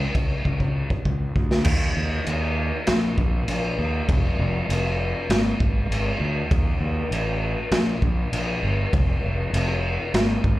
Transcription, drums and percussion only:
0.15 kick medium
0.15 crash medium
0.45 kick medium
0.60 kick medium
0.90 kick medium
1.05 kick medium
1.36 kick medium
1.51 snare medium
1.65 kick loud
1.65 crash loud
1.65 crash medium
2.27 crash medium
2.87 snare loud
2.87 crash medium
3.18 kick medium
3.48 crash medium
4.09 kick loud
4.09 crash medium
4.70 crash medium
5.30 snare loud
5.30 crash medium
5.60 kick medium
5.92 crash medium
6.51 kick loud
6.51 crash medium
7.12 crash medium
7.71 snare loud
7.71 crash medium
8.02 kick medium
8.33 crash medium
8.93 kick loud
8.93 crash medium
9.54 crash medium
10.14 snare loud
10.14 crash medium
10.44 kick medium

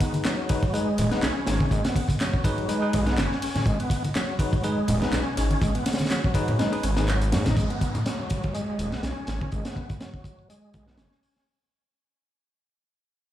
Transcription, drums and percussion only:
0.00 kick loud
0.00 closed hi-hat medium
0.00 ride medium
0.14 closed hi-hat soft
0.14 high conga medium
0.25 snare loud
0.25 clap loud
0.25 closed hi-hat soft
0.25 closed hi-hat medium
0.49 kick medium
0.49 closed hi-hat medium
0.49 ride medium
0.63 kick loud
0.63 closed hi-hat soft
0.74 closed hi-hat soft
0.74 closed hi-hat medium
0.98 closed hi-hat medium
0.98 ride medium
0.98 low conga medium
1.11 snare medium
1.11 closed hi-hat soft
1.23 snare loud
1.23 clap loud
1.23 closed hi-hat soft
1.23 closed hi-hat medium
1.46 snare loud
1.46 closed hi-hat medium
1.46 ride medium
1.60 kick medium
1.60 closed hi-hat soft
1.60 high conga medium
1.71 kick medium
1.71 closed hi-hat soft
1.71 closed hi-hat medium
1.84 snare loud
1.84 closed hi-hat medium
1.84 closed hi-hat soft
1.84 ride soft
1.96 kick medium
1.96 closed hi-hat medium
1.96 ride medium
2.09 kick medium
2.09 closed hi-hat soft
2.09 closed hi-hat medium
2.09 high conga medium
2.20 snare loud
2.20 clap loud
2.20 closed hi-hat soft
2.20 closed hi-hat medium
2.34 kick loud
2.44 kick loud
2.44 closed hi-hat medium
2.44 ride medium
2.58 closed hi-hat soft
2.69 closed hi-hat soft
2.69 closed hi-hat medium
2.93 kick loud
2.93 closed hi-hat medium
2.93 ride medium
3.07 snare medium
3.07 closed hi-hat soft
3.18 snare loud
3.18 clap loud
3.18 closed hi-hat medium
3.18 closed hi-hat soft
3.32 snare medium
3.42 closed hi-hat medium
3.42 open hi-hat medium
3.42 ride medium
3.55 snare medium
3.55 closed hi-hat soft
3.55 high conga medium
3.55 low conga medium
3.66 kick loud
3.66 closed hi-hat medium
3.66 closed hi-hat soft
3.80 closed hi-hat soft
3.80 ride medium
3.90 kick medium
3.90 closed hi-hat medium
3.90 ride medium
4.04 closed hi-hat soft
4.04 high conga medium
4.15 snare loud
4.15 clap loud
4.15 closed hi-hat medium
4.15 closed hi-hat soft
4.39 kick medium
4.39 closed hi-hat medium
4.39 ride medium
4.53 kick loud
4.53 closed hi-hat soft
4.63 closed hi-hat medium
4.63 closed hi-hat soft
4.88 closed hi-hat medium
4.88 ride medium
4.88 low conga medium
5.02 snare medium
5.02 closed hi-hat soft
5.12 snare loud
5.12 clap loud
5.12 closed hi-hat loud
5.12 closed hi-hat soft
5.37 closed hi-hat medium
5.37 ride medium
5.51 closed hi-hat soft
5.51 high conga medium
5.62 kick loud
5.62 closed hi-hat soft
5.62 closed hi-hat loud
5.75 closed hi-hat soft
5.75 ride soft
5.86 snare medium
5.86 closed hi-hat medium
5.86 ride medium
5.93 snare medium
5.93 closed hi-hat medium
5.98 snare medium
5.98 closed hi-hat medium
5.98 closed hi-hat soft
5.98 high conga medium
6.05 snare medium
6.05 closed hi-hat medium
6.10 snare loud
6.10 clap loud
6.10 closed hi-hat soft
6.10 closed hi-hat medium
6.24 kick loud
6.34 kick loud
6.34 closed hi-hat medium
6.34 ride medium
6.48 closed hi-hat soft
6.48 low conga medium
6.59 snare loud
6.59 closed hi-hat soft
6.59 closed hi-hat medium
6.73 ride medium
6.83 closed hi-hat medium
6.83 ride medium
6.97 snare loud
6.97 closed hi-hat medium
6.97 closed hi-hat soft
7.08 clap loud
7.08 closed hi-hat soft
7.21 closed hi-hat soft
7.21 closed hi-hat medium
7.32 snare loud
7.32 closed hi-hat medium
7.32 ride medium
7.46 snare loud
7.46 closed hi-hat soft
7.46 closed hi-hat medium
7.46 high conga medium
7.46 low conga medium
7.57 kick loud
7.57 closed hi-hat soft
7.57 closed hi-hat medium
7.70 closed hi-hat soft
7.81 kick loud
7.81 closed hi-hat medium
7.95 closed hi-hat soft
7.95 high conga medium
7.95 low conga medium
8.06 snare loud
8.06 closed hi-hat medium
8.06 closed hi-hat soft
8.30 kick medium
8.30 closed hi-hat medium
8.44 kick loud
8.44 closed hi-hat soft
8.55 closed hi-hat soft
8.55 closed hi-hat medium
8.79 closed hi-hat medium
8.92 snare medium
8.92 closed hi-hat soft
9.03 snare loud
9.03 closed hi-hat medium
9.03 closed hi-hat soft
9.27 snare medium
9.27 closed hi-hat medium
9.41 kick medium
9.41 closed hi-hat soft
9.41 high conga medium
9.52 kick medium
9.52 closed hi-hat medium
9.52 closed hi-hat soft
9.65 snare medium
9.65 closed hi-hat medium
9.65 closed hi-hat soft
9.76 kick medium
9.76 closed hi-hat medium
9.90 kick medium
9.90 closed hi-hat medium
9.90 closed hi-hat soft
10.01 snare loud
10.01 closed hi-hat medium
10.01 closed hi-hat soft
10.14 kick medium
10.24 kick medium
10.24 closed hi-hat medium
10.39 closed hi-hat soft
10.50 closed hi-hat soft
10.50 closed hi-hat medium
10.74 kick medium
10.74 closed hi-hat medium
10.87 snare medium
10.87 closed hi-hat soft
10.97 snare loud
10.97 closed hi-hat medium
10.97 closed hi-hat soft
11.12 snare soft
11.23 closed hi-hat medium
11.23 open hi-hat medium
11.36 snare soft
11.36 closed hi-hat soft

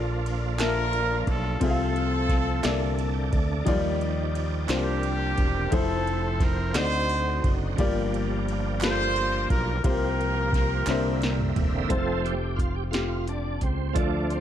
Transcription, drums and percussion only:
0.26 ride soft
0.59 snare loud
0.59 clap medium
0.59 ride medium
0.93 ride soft
1.27 kick medium
1.27 ride soft
1.61 kick loud
1.61 ride medium
1.96 ride soft
2.29 kick medium
2.29 snare soft
2.29 ride soft
2.64 snare loud
2.64 clap medium
2.64 ride medium
2.99 ride soft
3.33 kick medium
3.33 ride soft
3.67 kick loud
3.67 ride medium
4.01 ride soft
4.35 ride soft
4.69 snare medium
4.69 clap loud
4.69 ride medium
5.03 ride soft
5.38 kick medium
5.38 ride soft
5.72 kick loud
5.72 ride medium
6.07 ride soft
6.40 kick loud
6.40 snare soft
6.40 ride soft
6.74 snare loud
6.74 clap loud
6.74 ride medium
7.10 ride soft
7.44 kick medium
7.44 ride soft
7.78 kick loud
7.78 ride medium
8.14 ride soft
8.48 ride soft
8.80 snare loud
8.80 clap loud
8.80 ride medium
9.16 ride soft
9.50 kick loud
9.50 ride soft
9.84 kick loud
9.84 ride medium
10.21 ride soft
10.53 kick medium
10.53 snare soft
10.53 ride soft
10.86 snare medium
10.86 clap loud
10.86 ride medium
11.22 snare medium
11.22 ride soft
11.39 mid tom medium
11.56 floor tom loud
11.56 ride soft
11.90 kick loud
11.90 closed hi-hat medium
12.26 closed hi-hat soft
12.58 kick medium
12.58 closed hi-hat soft
12.93 snare medium
12.93 closed hi-hat medium
13.28 closed hi-hat soft
13.61 kick medium
13.61 closed hi-hat soft
13.96 kick loud
13.96 closed hi-hat medium
14.30 closed hi-hat soft

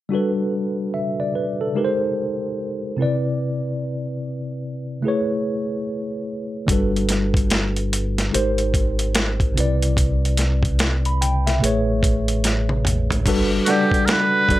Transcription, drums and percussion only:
6.68 kick medium
6.68 closed hi-hat medium
6.96 closed hi-hat soft
7.09 snare soft
7.09 closed hi-hat medium
7.34 kick medium
7.34 closed hi-hat soft
7.50 snare medium
7.50 closed hi-hat medium
7.76 closed hi-hat soft
7.93 closed hi-hat medium
8.18 snare soft
8.18 closed hi-hat soft
8.34 closed hi-hat medium
8.58 closed hi-hat soft
8.74 kick medium
8.74 closed hi-hat medium
8.99 closed hi-hat soft
9.15 snare medium
9.15 closed hi-hat medium
9.40 kick medium
9.40 closed hi-hat soft
9.57 closed hi-hat medium
9.82 closed hi-hat soft
9.97 kick medium
9.97 closed hi-hat medium
10.25 closed hi-hat soft
10.37 snare soft
10.37 closed hi-hat medium
10.63 kick medium
10.63 closed hi-hat soft
10.79 snare medium
10.79 closed hi-hat medium
11.05 closed hi-hat soft
11.22 closed hi-hat medium
11.47 snare soft
11.47 closed hi-hat soft
11.64 closed hi-hat medium
12.03 kick medium
12.03 closed hi-hat medium
12.28 closed hi-hat soft
12.44 snare soft
12.44 closed hi-hat medium
12.69 high tom soft
12.85 closed hi-hat medium
12.85 mid tom medium
13.10 closed hi-hat soft
13.10 floor tom medium
13.26 kick medium
13.26 closed hi-hat medium
13.26 crash medium
13.66 snare soft
13.66 closed hi-hat medium
13.91 kick medium
13.91 closed hi-hat soft
14.08 snare medium
14.08 closed hi-hat medium
14.49 kick medium
14.49 closed hi-hat medium

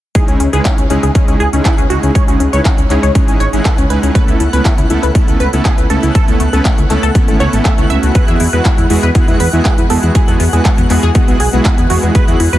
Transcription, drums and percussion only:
0.15 kick loud
0.15 closed hi-hat medium
0.28 closed hi-hat soft
0.40 closed hi-hat medium
0.53 closed hi-hat soft
0.65 kick medium
0.65 clap loud
0.65 closed hi-hat medium
0.78 closed hi-hat soft
0.90 closed hi-hat medium
1.03 closed hi-hat soft
1.15 kick loud
1.15 closed hi-hat medium
1.28 closed hi-hat soft
1.40 closed hi-hat soft
1.53 closed hi-hat soft
1.65 kick loud
1.65 clap loud
1.65 closed hi-hat medium
1.78 closed hi-hat soft
1.90 closed hi-hat medium
2.03 closed hi-hat soft
2.15 kick loud
2.15 closed hi-hat medium
2.28 closed hi-hat soft
2.40 closed hi-hat medium
2.53 closed hi-hat soft
2.65 kick loud
2.65 clap loud
2.65 closed hi-hat medium
2.78 closed hi-hat soft
2.90 clap soft
2.90 closed hi-hat medium
3.03 closed hi-hat soft
3.15 kick loud
3.15 closed hi-hat medium
3.28 closed hi-hat soft
3.40 closed hi-hat soft
3.53 closed hi-hat soft
3.65 kick loud
3.65 clap loud
3.65 closed hi-hat medium
3.78 closed hi-hat soft
3.90 closed hi-hat medium
4.03 closed hi-hat soft
4.15 kick loud
4.15 closed hi-hat medium
4.28 closed hi-hat soft
4.40 closed hi-hat medium
4.53 closed hi-hat soft
4.65 kick loud
4.65 clap loud
4.65 closed hi-hat medium
4.78 closed hi-hat soft
4.90 closed hi-hat medium
5.03 closed hi-hat soft
5.15 kick loud
5.15 closed hi-hat medium
5.28 closed hi-hat soft
5.40 closed hi-hat soft
5.53 closed hi-hat soft
5.65 kick loud
5.65 clap loud
5.65 closed hi-hat medium
5.78 closed hi-hat soft
5.90 closed hi-hat medium
6.03 closed hi-hat soft
6.15 kick loud
6.15 closed hi-hat medium
6.28 closed hi-hat soft
6.40 closed hi-hat medium
6.53 closed hi-hat soft
6.65 kick loud
6.65 clap loud
6.65 closed hi-hat medium
6.78 closed hi-hat soft
6.90 clap soft
6.90 closed hi-hat medium
7.03 closed hi-hat soft
7.15 kick loud
7.15 closed hi-hat medium
7.28 closed hi-hat soft
7.40 closed hi-hat soft
7.53 closed hi-hat soft
7.65 kick loud
7.65 clap loud
7.65 closed hi-hat medium
7.78 closed hi-hat soft
7.90 closed hi-hat medium
8.03 closed hi-hat soft
8.15 kick loud
8.15 closed hi-hat medium
8.28 closed hi-hat soft
8.40 open hi-hat loud
8.53 closed hi-hat soft
8.65 kick loud
8.65 clap loud
8.65 closed hi-hat medium
8.78 closed hi-hat soft
8.90 open hi-hat loud
9.03 closed hi-hat soft
9.15 kick loud
9.15 closed hi-hat medium
9.28 closed hi-hat soft
9.40 open hi-hat loud
9.53 closed hi-hat soft
9.65 kick loud
9.65 clap loud
9.65 closed hi-hat medium
9.78 closed hi-hat soft
9.90 open hi-hat loud
10.03 closed hi-hat soft
10.15 kick loud
10.15 closed hi-hat medium
10.28 closed hi-hat soft
10.40 open hi-hat loud
10.53 closed hi-hat soft
10.65 kick medium
10.65 clap loud
10.65 closed hi-hat medium
10.78 closed hi-hat soft
10.90 clap soft
10.90 open hi-hat loud
11.03 closed hi-hat soft
11.15 kick loud
11.15 closed hi-hat medium
11.28 closed hi-hat soft
11.40 open hi-hat loud
11.53 closed hi-hat soft
11.65 kick loud
11.65 clap loud
11.65 closed hi-hat medium
11.78 closed hi-hat soft
11.90 open hi-hat loud
12.03 closed hi-hat soft
12.15 kick loud
12.15 closed hi-hat medium
12.28 closed hi-hat soft
12.40 open hi-hat loud
12.53 closed hi-hat soft

